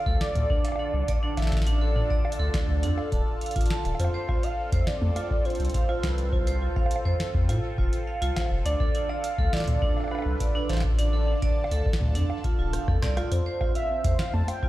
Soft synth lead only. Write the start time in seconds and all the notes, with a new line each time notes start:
Already playing: F5
0.21 D5
1.38 E5
1.67 D5
4.00 C5
4.43 F5
4.80 E5
4.87 D5
5.45 C5
6.03 B4
6.33 C5
8.66 D5
9.09 F5
9.53 D5
10.11 B4
10.70 C5
10.99 D5
13.32 C5
13.75 E5
14.19 F5
14.34 A5
14.48 G5